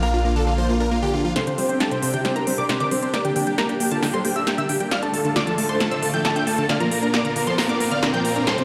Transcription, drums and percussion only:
1.36 snare soft
1.36 closed hi-hat medium
1.47 closed hi-hat soft
1.58 open hi-hat medium
1.69 closed hi-hat soft
1.80 snare soft
1.80 closed hi-hat medium
1.91 closed hi-hat soft
2.03 open hi-hat loud
2.14 closed hi-hat soft
2.25 snare soft
2.25 closed hi-hat medium
2.36 closed hi-hat soft
2.47 open hi-hat loud
2.58 closed hi-hat soft
2.69 snare soft
2.69 closed hi-hat medium
2.80 closed hi-hat soft
2.91 open hi-hat loud
3.03 closed hi-hat soft
3.14 snare soft
3.14 closed hi-hat medium
3.25 closed hi-hat soft
3.36 open hi-hat loud
3.47 closed hi-hat soft
3.58 snare medium
3.58 closed hi-hat medium
3.69 closed hi-hat soft
3.80 open hi-hat loud
3.91 closed hi-hat soft
4.03 snare medium
4.03 open hi-hat medium
4.14 closed hi-hat soft
4.25 open hi-hat loud
4.36 closed hi-hat soft
4.47 snare medium
4.47 closed hi-hat medium
4.58 closed hi-hat soft
4.69 open hi-hat loud
4.80 closed hi-hat soft
4.91 snare medium
4.91 closed hi-hat medium
5.03 closed hi-hat soft
5.14 open hi-hat loud
5.25 closed hi-hat soft
5.36 snare medium
5.36 closed hi-hat medium
5.47 closed hi-hat soft
5.58 open hi-hat loud
5.69 closed hi-hat soft
5.80 snare medium
5.80 closed hi-hat medium
5.92 closed hi-hat soft
6.03 open hi-hat loud
6.14 closed hi-hat soft
6.25 snare medium
6.25 closed hi-hat medium
6.36 closed hi-hat soft
6.47 open hi-hat loud
6.58 closed hi-hat soft
6.69 snare medium
6.69 closed hi-hat medium
6.80 closed hi-hat soft
6.92 open hi-hat loud
7.03 closed hi-hat soft
7.14 snare medium
7.14 closed hi-hat medium
7.25 closed hi-hat soft
7.36 open hi-hat loud
7.47 closed hi-hat soft
7.58 snare medium
7.58 open hi-hat medium
7.69 closed hi-hat soft
7.80 open hi-hat loud
7.92 closed hi-hat soft
8.03 snare medium
8.03 closed hi-hat medium
8.14 closed hi-hat soft
8.25 open hi-hat loud
8.36 closed hi-hat soft
8.47 snare medium
8.47 closed hi-hat medium
8.58 closed hi-hat soft

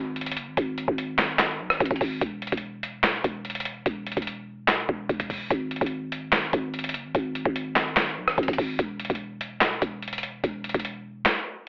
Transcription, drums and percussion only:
0.16 closed hi-hat soft
0.21 closed hi-hat medium
0.26 closed hi-hat medium
0.31 closed hi-hat medium
0.37 closed hi-hat medium
0.57 kick loud
0.57 closed hi-hat medium
0.78 closed hi-hat medium
0.88 kick loud
0.98 closed hi-hat medium
1.18 snare medium
1.18 clap medium
1.39 snare loud
1.39 clap loud
1.39 closed hi-hat medium
1.70 cross-stick loud
1.80 kick loud
1.80 closed hi-hat medium
1.86 closed hi-hat medium
1.91 kick medium
1.91 closed hi-hat medium
1.96 closed hi-hat medium
2.01 kick medium
2.01 open hi-hat medium
2.22 kick loud
2.22 closed hi-hat medium
2.42 closed hi-hat medium
2.47 closed hi-hat medium
2.52 kick medium
2.52 closed hi-hat medium
2.58 closed hi-hat medium
2.83 closed hi-hat medium
3.03 snare loud
3.03 clap loud
3.03 closed hi-hat medium
3.24 kick medium
3.24 closed hi-hat medium
3.45 closed hi-hat medium
3.50 closed hi-hat medium
3.55 closed hi-hat medium
3.60 closed hi-hat medium
3.65 closed hi-hat medium
3.86 kick loud
3.86 closed hi-hat medium
4.07 closed hi-hat medium
4.12 closed hi-hat medium
4.17 kick loud
4.17 closed hi-hat medium
4.22 closed hi-hat medium
4.27 closed hi-hat medium
4.68 snare loud
4.68 clap loud
4.68 closed hi-hat medium
4.89 kick medium
5.09 kick loud
5.09 closed hi-hat soft
5.20 kick medium
5.20 closed hi-hat medium
5.30 kick medium
5.30 open hi-hat medium
5.50 kick loud
5.50 closed hi-hat medium
5.71 closed hi-hat medium
5.76 closed hi-hat medium
5.81 kick loud
5.81 closed hi-hat medium
5.86 closed hi-hat medium
6.12 closed hi-hat medium
6.32 snare loud
6.32 clap loud
6.32 closed hi-hat medium
6.53 kick medium
6.53 closed hi-hat medium
6.74 closed hi-hat medium
6.79 closed hi-hat medium
6.84 closed hi-hat medium
6.89 closed hi-hat medium
6.94 closed hi-hat medium
7.15 kick loud
7.15 closed hi-hat medium
7.35 closed hi-hat medium
7.46 kick medium
7.56 closed hi-hat medium
7.76 snare loud
7.76 clap medium
7.97 snare loud
7.97 clap loud
7.97 closed hi-hat medium
8.28 cross-stick loud
8.38 kick loud
8.38 closed hi-hat medium
8.43 closed hi-hat medium
8.48 kick loud
8.48 closed hi-hat medium
8.53 closed hi-hat medium
8.58 kick medium
8.58 open hi-hat medium
8.79 kick loud
8.79 closed hi-hat medium
9.00 closed hi-hat medium
9.05 closed hi-hat medium
9.10 kick medium
9.10 closed hi-hat medium
9.15 closed hi-hat medium
9.41 closed hi-hat medium
9.61 snare loud
9.61 clap loud
9.61 closed hi-hat medium
9.82 kick medium
9.82 closed hi-hat medium
10.02 closed hi-hat soft
10.08 closed hi-hat medium
10.13 closed hi-hat medium
10.18 closed hi-hat medium
10.23 closed hi-hat medium
10.44 kick loud
10.44 closed hi-hat medium
10.64 closed hi-hat medium
10.69 closed hi-hat medium
10.74 kick loud
10.74 closed hi-hat medium
10.79 closed hi-hat medium
10.85 closed hi-hat medium
11.25 snare loud
11.25 clap loud
11.25 closed hi-hat medium

